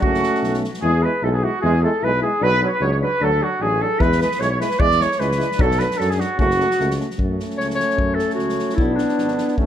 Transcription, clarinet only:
0.04 0.59 F#4 medium
0.83 1.07 G#4 medium
1.05 1.26 B4 medium
1.24 1.32 A4 medium
1.32 1.46 G#4 medium
1.32 1.36 A4 soft
1.45 1.63 F#4 medium
1.65 1.82 G#4 medium
1.84 2.05 A4 medium
2.04 2.23 B4 medium
2.24 2.44 G#4 medium
2.43 2.62 B4 loud
2.63 2.67 B4 medium
2.63 2.72 C#5 medium
2.71 2.83 B4 medium
2.81 2.92 C#5 medium
2.92 2.96 C#5 medium
3.02 3.23 B4 medium
3.22 3.43 A4 loud
3.42 3.64 F#4 medium
3.62 3.82 G#4 medium
3.81 4.00 A4 medium
3.99 4.19 B4 loud
4.20 4.40 B4 medium
4.39 4.50 C#5 medium
4.50 4.59 C#5 medium
4.61 4.81 B4 medium
4.80 5.02 D5 loud
5.01 5.21 C#5 medium
5.19 5.63 B4 medium
5.61 5.83 A4 loud
5.82 6.01 B4 medium
6.00 6.14 A4 medium
6.13 6.22 G#4 medium
6.21 6.40 F#4 medium
6.42 6.96 F#4 medium
7.57 7.67 C#5 medium
7.75 8.16 C#5 medium
8.14 8.34 A4 medium
8.35 8.74 F#4 medium
8.75 8.96 E4 medium
8.95 9.57 D4 medium

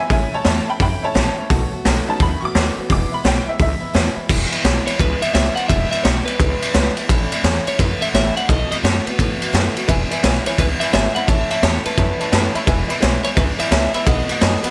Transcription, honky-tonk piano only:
0.00 0.10 G#5 loud
0.09 0.64 A3 medium
0.09 0.65 C#4 medium
0.09 0.65 E4 medium
0.09 0.32 E5 loud
0.09 0.33 G#5 loud
0.34 0.45 C#5 medium
0.34 0.46 A5 medium
0.47 0.67 C#5 medium
0.47 0.68 A5 loud
0.70 0.80 G5 medium
0.70 0.81 B5 medium
0.82 1.02 G5 medium
0.82 1.03 B5 loud
1.03 1.14 A3 medium
1.03 1.14 C#4 soft
1.03 1.14 E4 medium
1.03 1.69 C#5 loud
1.03 1.71 A5 loud
2.07 2.86 A3 medium
2.07 2.86 C#4 medium
2.07 2.86 D#4 medium
2.07 2.21 A5 loud
2.22 2.43 B5 loud
2.41 2.42 C#6 medium
2.45 2.90 D6 loud
2.90 3.44 G#3 medium
2.90 3.44 B3 medium
2.90 3.45 E4 medium
2.90 3.13 D6 loud
3.14 3.25 B5 loud
3.27 3.48 G5 loud
3.49 3.60 E5 loud
3.62 3.95 E5 loud
9.88 10.02 B4 loud
9.88 10.02 E5 loud
9.88 10.03 G#5 loud
10.11 10.18 B4 medium
10.11 10.19 E5 medium
10.11 10.19 G#5 medium
10.23 10.37 B4 loud
10.23 10.37 E5 loud
10.23 10.38 G#5 loud
10.46 10.53 B4 medium
10.46 10.54 E5 medium
10.46 10.54 G#5 medium
10.58 10.72 B4 medium
10.58 10.72 E5 medium
10.58 10.72 G#5 medium
10.81 10.88 B4 medium
10.81 10.89 E5 medium
10.81 10.89 G#5 medium
10.93 11.06 B4 loud
10.93 11.07 E5 medium
10.93 11.07 G#5 loud
11.15 11.23 B4 medium
11.15 11.23 E5 medium
11.15 11.24 B5 medium
11.27 11.41 C#5 loud
11.27 11.41 E5 loud
11.27 11.42 A5 loud
11.50 11.58 C#5 medium
11.50 11.58 E5 medium
11.50 11.59 A5 loud
11.63 11.76 C#5 medium
11.63 11.77 E5 medium
11.63 11.77 A5 loud
11.85 11.92 C#5 medium
11.85 11.93 E5 medium
11.85 11.93 A5 medium
11.97 12.11 C#5 medium
11.97 12.11 E5 medium
11.97 12.12 A5 medium
12.19 12.27 C#5 medium
12.19 12.27 E5 medium
12.19 12.28 A5 medium
12.32 12.46 C#5 loud
12.32 12.46 E5 loud
12.32 12.46 A5 loud
12.54 12.62 C#5 loud
12.54 12.62 E5 loud
12.54 12.63 B5 loud
12.66 12.80 B4 loud
12.66 12.81 E5 loud
12.66 12.81 G#5 loud
12.88 12.96 B4 medium
12.88 12.97 E5 medium
12.88 12.97 B5 loud
13.01 13.15 B4 loud
13.01 13.15 E5 medium
13.01 13.16 G#5 loud
13.23 13.31 B4 medium
13.23 13.31 E5 medium
13.23 13.32 G#5 medium
13.35 13.50 B4 medium
13.35 13.50 E5 medium
13.35 13.50 G#5 medium
13.58 13.66 B4 medium
13.58 13.67 E5 medium
13.58 13.67 G#5 medium
13.71 13.85 B4 loud
13.71 13.85 E5 loud
13.71 13.86 G#5 loud
13.94 14.01 B4 medium
13.94 14.02 E5 medium
13.94 14.02 B5 medium
14.06 14.20 B4 loud
14.06 14.20 D#5 medium
14.06 14.21 F#5 loud
14.29 14.36 B4 medium
14.29 14.37 D#5 medium
14.29 14.37 F#5 medium
14.41 14.55 B4 loud
14.41 14.55 D#5 medium
14.41 14.56 G#5 loud
14.63 14.71 B4 loud
14.63 14.71 D#5 medium
14.63 14.71 F#5 loud

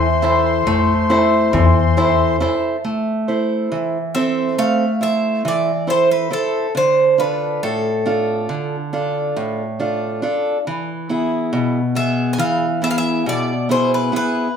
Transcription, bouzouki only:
0.00 2.37 A5 medium
4.15 4.54 E5 medium
4.59 5.02 F5 medium
5.03 5.42 E5 medium
5.48 5.91 D5 medium
5.90 6.09 C5 medium
6.11 6.30 B4 medium
6.33 6.72 A4 medium
6.77 7.16 C5 medium
7.20 7.63 B4 medium
7.63 8.88 A4 medium
11.96 12.30 E5 medium
12.33 12.39 G#5 medium
12.39 12.79 F5 medium
12.84 12.90 E5 medium
12.91 12.97 F5 medium
12.98 13.27 E5 medium
13.29 13.68 D5 medium
13.71 13.90 C5 medium
13.94 14.13 B4 medium
14.16 14.57 B4 medium

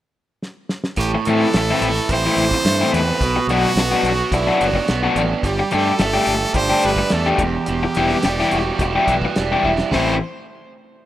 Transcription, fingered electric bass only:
0.98 1.15 A1 medium
1.27 1.44 A2 medium
1.54 1.71 A1 medium
1.82 1.99 A1 medium
2.09 2.26 A1 medium
2.37 2.54 A1 medium
2.65 2.82 G2 medium
2.94 3.10 E2 medium
3.20 3.38 B1 medium
3.47 3.65 B1 medium
3.76 3.93 B1 medium
4.03 4.21 B1 medium
4.31 4.49 B1 medium
4.61 4.78 F#1 medium
4.90 5.06 B1 medium
5.16 5.33 A1 medium
5.43 5.61 G1 medium
5.74 5.90 G2 medium
6.00 6.17 G1 medium
6.27 6.44 G1 medium
6.54 6.71 G1 medium
6.85 7.02 G1 medium
7.13 7.30 E2 medium
7.38 7.56 E1 medium
7.68 7.85 E1 medium
7.97 8.14 E1 medium
8.25 8.42 E1 medium
8.53 8.70 E1 medium
8.79 8.96 E1 medium
9.07 9.25 B1 medium
9.37 9.54 E1 medium
9.64 9.81 E1 medium
9.94 10.20 A1 medium

